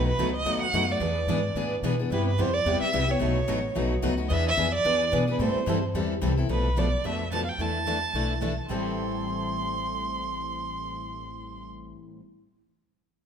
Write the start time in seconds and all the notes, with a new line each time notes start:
Already playing: B1 F#3 A3 D#4 F#4 B4
0.07 B4
0.17 C#2 B2 F#3 A3 D#4 F#4 B4
0.36 D#5
0.45 D#2 B2 F#3 A3 D#4 F#4 B4
0.62 F#5
0.73 F#2 B2 F#3 A3 D#4 F#4 B4
0.88 A3 D#4 F#4 D5
1.00 E2 E3 B3 D4 G#4 B4
1.27 G#2 E3 B3 D4 G#4 B4
1.55 A2 E3 B3 D4 G#4 B4
1.82 B2 E3 B3 D4 G#4 B4
1.99 B3 D4 G#4
2.10 G2 C3 G3 B3 E4 G4 B4
2.28 B4
2.38 F2 C3 G3 B3 E4 G4 C5
2.53 D5
2.65 E2 C3 G3 B3 E4 G4
2.81 E5, muted upright bass stroke
2.92 C2 C3 G3 B3 E4 G4
3.08 B3 E4 G4 C#5
3.20 B1 B2 F#3 A3 D#4 F#4 B4
3.48 A1 B2 F#3 A3 D#4 F#4 B4
3.75 B1 B2 F#3 A3 D#4 F#4 B4
4.03 C#2 B2 F#3 A3 D#4 F#4 B4
4.17 A3 D#4 F#4
4.28 E2 E3 B3 D4 G#4 B4 D#5
4.33 E5
4.48 E5
4.57 F2 E3 B3 D4 G#4 B4
4.75 D5
4.85 E2 E3 B3 D4 G#4 B4
5.12 B2 E3 B3 D4 G#4 B4
5.27 B3 D4 G#4 B4
5.39 A2 E3 G3 C4 E4 A4 C5
5.55 muted upright bass stroke
5.66 G2 E3 G3 C4 E4 A4
5.94 E2 E3 G3 C4 E4 A4
6.22 C2 E3 G3 C4 E4 A4
6.37 C4 E4 A4
6.49 B1 B2 F3 A3 D4 A4 B4
6.77 B2 F3 A3 D4 A4 B4 D5
7.04 F2 B2 F3 A3 D4 A4 B4 E5
7.31 B2 F3 A3 D4 A4 B4 A5
7.44 F5
7.48 G5
7.58 E2 E3 A3 D4 E4 A4 A5
7.86 E3 A3 D4 E4 A4
8.13 B1 E3 A3 D4 E4 A4
8.41 E3 A3 D4 E4 A4
8.68 A1 A2 E3 G3 C4 E4 A4 C6